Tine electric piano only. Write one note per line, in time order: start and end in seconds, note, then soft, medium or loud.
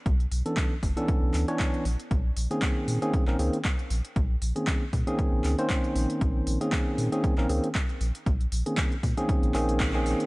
0.46 0.73 E3 medium
0.46 0.73 B3 medium
0.46 0.73 C#4 medium
0.46 0.73 D4 medium
0.46 0.73 A4 medium
0.97 1.45 E3 loud
0.97 1.45 B3 medium
0.97 1.45 C#4 medium
0.97 1.45 D4 medium
0.97 1.45 A4 loud
1.48 1.84 E3 loud
1.48 1.84 B3 medium
1.48 1.84 C#4 medium
1.48 1.84 D4 medium
1.48 1.84 C#5 loud
2.51 2.99 D#3 medium
2.51 2.99 A#3 medium
2.51 2.99 C4 medium
2.51 2.99 C#4 medium
2.51 2.99 G#4 loud
3.02 3.23 D#3 medium
3.02 3.23 A#3 medium
3.02 3.23 C4 medium
3.02 3.23 C#4 medium
3.02 3.24 G#4 medium
3.27 3.36 D#3 medium
3.27 3.36 A#3 medium
3.27 3.36 C4 medium
3.27 3.36 C#4 medium
3.27 3.36 A#4 loud
3.39 3.57 D#3 medium
3.39 3.57 A#3 medium
3.39 3.57 C4 medium
3.39 3.57 C#4 medium
3.39 3.57 G#4 medium
4.56 4.83 D#3 medium
4.56 4.83 A#3 medium
4.56 4.84 C4 medium
4.56 4.84 C#4 medium
4.56 4.84 G#4 medium
5.07 5.55 D#3 loud
5.07 5.55 A#3 medium
5.07 5.55 C4 medium
5.07 5.55 C#4 medium
5.07 5.55 G#4 loud
5.58 6.57 D#3 loud
5.58 6.58 A#3 medium
5.58 6.58 C4 medium
5.58 6.58 C#4 medium
5.58 6.58 C5 loud
6.61 7.09 D#3 medium
6.61 7.09 A#3 medium
6.61 7.09 C4 medium
6.61 7.09 C#4 medium
6.61 7.09 G#4 loud
7.12 7.34 D#3 medium
7.12 7.34 A#3 medium
7.12 7.34 C4 medium
7.12 7.34 C#4 medium
7.12 7.34 G#4 loud
7.38 7.47 D#3 loud
7.38 7.47 A#3 medium
7.38 7.47 C4 medium
7.38 7.47 C#4 medium
7.38 7.47 A#4 loud
7.49 7.68 D#3 medium
7.49 7.68 A#3 medium
7.49 7.68 C4 medium
7.49 7.68 C#4 medium
7.49 7.68 G#4 medium
8.66 8.94 D#3 medium
8.66 8.94 A#3 medium
8.66 8.94 C4 medium
8.66 8.94 C#4 medium
8.66 8.94 G#4 medium
9.17 9.52 D#3 loud
9.17 9.52 A#3 medium
9.17 9.52 C4 medium
9.17 9.52 C#4 medium
9.17 9.52 G#4 loud
9.54 9.91 D#3 loud
9.54 9.91 A#3 medium
9.54 9.91 C4 medium
9.54 9.91 C#4 medium
9.54 9.91 G#4 loud
9.94 10.26 D#3 medium
9.94 10.26 A#3 medium
9.94 10.26 C4 medium
9.94 10.26 C#4 medium
9.94 10.26 G#4 loud